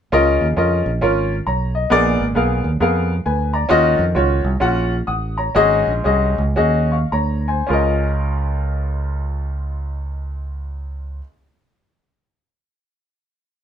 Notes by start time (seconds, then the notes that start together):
0.12 C#2 C#3 C#4 F4 A#4 D#5
0.41 D#2
0.57 F2 C#4 F4 A#4 D#5
0.86 A#1
1.01 G#1 C#4 F4 A#4 C#5
1.47 B1 C#5 A#5
1.75 D#5
1.90 A#1 A#2 B3 G#4 A#4 D5
2.20 G#1
2.35 B1 B3 G#4 A#4 F5
2.64 D#2
2.80 F2 B3 G#4 A#4 F5
3.26 D2 B4 G#5
3.54 D5 A#5
3.69 D#2 D#3 C#4 F4 F#4 D#5
3.99 F2
4.15 C#2 C#4 F4 F#4 C#5
4.44 C2
4.60 A#1 C#4 F4 F#4 F#5
5.07 A1 F#5 D#6
5.38 C#5 A#5
5.55 G#1 G#2 C#4 F#4 G#4 D#5
5.87 A#1
6.04 C2 C#4 F#4 G#4 D#5
6.38 C#2
6.56 D#2 C#4 F#4 G#4 D#5
6.92 F5 C#6
7.12 D2 C#5 A#5
7.48 C5 G#5
7.67 C#2 C#4 F4 A#4
7.73 D#5